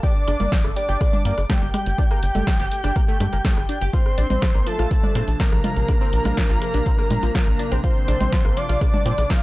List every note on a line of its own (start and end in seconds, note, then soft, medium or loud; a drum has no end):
0.03 0.13 G4 medium
0.03 0.67 D5 loud
0.03 0.13 G5 medium
0.03 0.67 D6 loud
0.03 kick loud
0.03 closed hi-hat medium
0.28 0.36 G1 medium
0.28 0.37 D4 loud
0.28 0.37 D5 medium
0.28 cross-stick medium
0.28 closed hi-hat loud
0.40 0.48 G1 medium
0.40 0.45 A#3 medium
0.40 0.45 A#4 medium
0.40 closed hi-hat medium
0.40 low conga medium
0.52 kick loud
0.52 snare loud
0.52 closed hi-hat medium
0.64 0.72 G1 medium
0.64 0.76 A3 medium
0.64 0.76 A4 medium
0.64 cross-stick medium
0.76 0.86 G3 medium
0.76 0.86 G4 medium
0.76 1.40 D5 loud
0.76 1.40 D6 loud
0.76 closed hi-hat medium
0.89 0.97 G1 medium
0.89 0.98 G4 loud
0.89 0.98 G5 medium
0.89 closed hi-hat medium
1.01 kick loud
1.01 cross-stick medium
1.01 closed hi-hat medium
1.13 1.22 D4 loud
1.13 1.22 D5 medium
1.13 low conga medium
1.25 1.33 G2 loud
1.25 1.35 A#3 loud
1.25 1.35 A#4 medium
1.25 closed hi-hat loud
1.38 1.45 G1 medium
1.38 cross-stick medium
1.38 closed hi-hat medium
1.49 1.59 A3 medium
1.49 1.59 A4 medium
1.49 3.84 G5 loud
1.49 3.84 G6 loud
1.49 kick loud
1.49 snare loud
1.49 closed hi-hat medium
1.62 1.70 G1 medium
1.62 1.67 G3 medium
1.62 1.67 G4 medium
1.74 1.80 G4 medium
1.74 1.80 G5 medium
1.74 cross-stick medium
1.74 closed hi-hat loud
1.74 low conga medium
1.86 1.94 G1 medium
1.86 closed hi-hat medium
1.98 2.04 D4 loud
1.98 2.04 D5 medium
1.98 kick loud
1.98 closed hi-hat medium
2.11 2.20 A#3 loud
2.11 2.20 A#4 medium
2.11 cross-stick medium
2.23 2.31 G1 medium
2.23 closed hi-hat loud
2.35 2.43 G1 medium
2.35 2.44 A3 medium
2.35 2.44 A4 medium
2.35 closed hi-hat medium
2.35 low conga medium
2.47 2.57 G3 medium
2.47 2.57 G4 medium
2.47 kick loud
2.47 cross-stick medium
2.47 snare loud
2.47 closed hi-hat medium
2.60 2.67 G1 medium
2.60 2.69 G4 loud
2.60 2.69 G5 medium
2.60 snare soft
2.71 closed hi-hat loud
2.84 2.92 G1 medium
2.84 2.93 D4 loud
2.84 2.93 D5 medium
2.84 cross-stick medium
2.84 closed hi-hat medium
2.96 3.02 A#3 loud
2.96 3.02 A#4 medium
2.96 kick loud
2.96 closed hi-hat medium
3.08 3.17 A3 loud
3.08 3.17 A4 medium
3.20 3.28 G2 medium
3.20 3.26 A3 medium
3.20 3.26 A4 medium
3.20 cross-stick medium
3.20 closed hi-hat loud
3.20 low conga medium
3.33 3.40 G1 medium
3.33 3.38 A#3 medium
3.33 3.38 A#4 medium
3.33 closed hi-hat medium
3.45 3.56 A3 loud
3.45 3.56 A4 medium
3.45 kick loud
3.45 snare loud
3.45 closed hi-hat medium
3.57 3.65 G1 medium
3.57 cross-stick medium
3.69 3.78 D4 medium
3.69 3.78 D5 medium
3.69 closed hi-hat loud
3.81 3.89 G1 medium
3.81 3.91 G4 loud
3.81 3.91 G5 medium
3.81 closed hi-hat medium
3.93 9.43 C3 medium
3.93 9.43 F3 medium
3.93 9.43 A#3 medium
3.93 9.43 D4 medium
3.93 4.03 F4 medium
3.93 4.68 C5 loud
3.93 4.03 F5 medium
3.93 4.67 C6 loud
3.93 kick loud
3.93 closed hi-hat medium
4.06 cross-stick medium
4.18 4.26 A#1 loud
4.18 4.27 D4 loud
4.18 4.27 D5 medium
4.18 closed hi-hat loud
4.30 4.38 A#1 medium
4.30 4.36 C4 medium
4.30 4.36 C5 medium
4.30 closed hi-hat medium
4.30 low conga medium
4.42 kick loud
4.42 cross-stick medium
4.42 snare loud
4.42 closed hi-hat medium
4.55 4.62 A#1 medium
4.55 4.66 A#3 medium
4.55 4.66 A#4 medium
4.67 4.76 F3 medium
4.67 4.76 F4 medium
4.67 5.30 A4 loud
4.67 5.30 A5 medium
4.67 closed hi-hat medium
4.79 4.87 A#1 medium
4.79 4.88 F4 loud
4.79 4.88 F5 medium
4.79 cross-stick medium
4.79 closed hi-hat medium
4.91 kick loud
4.91 closed hi-hat medium
5.03 5.13 D4 loud
5.03 5.13 D5 medium
5.03 low conga medium
5.15 5.23 A#2 medium
5.15 5.25 C4 loud
5.15 5.25 C5 medium
5.15 cross-stick medium
5.15 closed hi-hat loud
5.28 5.35 A#1 medium
5.28 closed hi-hat medium
5.40 5.49 A#3 medium
5.40 7.74 A#4 loud
5.40 5.49 A#4 medium
5.40 7.74 A#5 loud
5.40 kick loud
5.40 snare loud
5.40 closed hi-hat medium
5.52 5.60 A#1 medium
5.52 5.58 F3 medium
5.52 5.58 F4 medium
5.52 cross-stick medium
5.64 5.70 F4 medium
5.64 5.70 F5 medium
5.64 closed hi-hat medium
5.64 low conga medium
5.77 5.84 A#1 medium
5.77 closed hi-hat medium
5.88 5.94 D4 loud
5.88 5.94 D5 medium
5.88 kick loud
5.88 cross-stick medium
5.88 closed hi-hat medium
6.01 6.10 C4 loud
6.01 6.10 C5 medium
6.13 6.21 A#1 medium
6.13 closed hi-hat loud
6.25 6.33 A#1 medium
6.25 6.36 F4 medium
6.25 6.37 F5 medium
6.25 cross-stick medium
6.25 closed hi-hat medium
6.25 low conga medium
6.37 6.47 F3 medium
6.37 6.47 F4 medium
6.37 kick loud
6.37 snare loud
6.37 closed hi-hat medium
6.50 6.58 A#1 medium
6.50 6.59 F4 loud
6.50 6.59 F5 medium
6.50 snare soft
6.62 cross-stick medium
6.62 closed hi-hat medium
6.74 6.82 A#1 medium
6.74 6.83 D4 loud
6.74 6.83 D5 medium
6.74 closed hi-hat medium
6.86 6.92 C4 loud
6.86 6.92 C5 medium
6.86 kick loud
6.86 closed hi-hat medium
6.99 7.08 A#3 loud
6.99 7.08 A#4 medium
6.99 cross-stick medium
7.11 7.19 A#2 loud
7.11 closed hi-hat loud
7.11 low conga medium
7.23 7.31 A#1 medium
7.23 7.32 F3 medium
7.23 7.32 F4 medium
7.23 closed hi-hat medium
7.35 7.44 F4 medium
7.35 7.44 F5 medium
7.35 kick loud
7.35 cross-stick medium
7.35 snare loud
7.35 closed hi-hat medium
7.47 7.55 A#1 medium
7.59 7.69 D4 medium
7.59 7.69 D5 medium
7.59 closed hi-hat medium
7.72 7.79 A#1 medium
7.72 7.81 C4 loud
7.72 7.81 C5 medium
7.72 cross-stick medium
7.72 closed hi-hat medium
7.84 7.93 F4 medium
7.84 8.58 C5 loud
7.84 7.93 F5 medium
7.84 8.57 C6 loud
7.84 kick loud
7.84 closed hi-hat medium
8.08 8.16 A#1 medium
8.08 8.18 D4 loud
8.08 8.18 D5 medium
8.08 cross-stick medium
8.08 closed hi-hat loud
8.21 8.28 A#1 medium
8.21 8.26 C4 medium
8.21 8.26 C5 medium
8.21 closed hi-hat medium
8.21 low conga medium
8.32 kick loud
8.32 snare loud
8.32 closed hi-hat medium
8.45 8.53 A#1 medium
8.45 8.56 A#3 medium
8.45 8.56 A#4 medium
8.45 cross-stick medium
8.57 8.66 F3 medium
8.57 8.66 F4 medium
8.57 9.32 D5 loud
8.57 9.30 D6 loud
8.57 closed hi-hat medium
8.69 8.77 A#1 medium
8.69 8.78 F4 loud
8.69 8.78 F5 medium
8.69 closed hi-hat medium
8.81 kick loud
8.81 cross-stick medium
8.81 closed hi-hat medium
8.94 9.03 D4 loud
8.94 9.03 D5 medium
8.94 low conga medium
9.06 9.14 A#2 loud
9.06 9.15 C4 loud
9.06 9.15 C5 medium
9.06 closed hi-hat loud
9.18 9.26 A#1 medium
9.18 cross-stick medium
9.18 closed hi-hat medium
9.30 9.39 A#3 medium
9.30 9.39 A#4 medium
9.30 9.43 F5 loud
9.30 9.43 F6 loud
9.30 kick loud
9.30 snare loud
9.30 closed hi-hat medium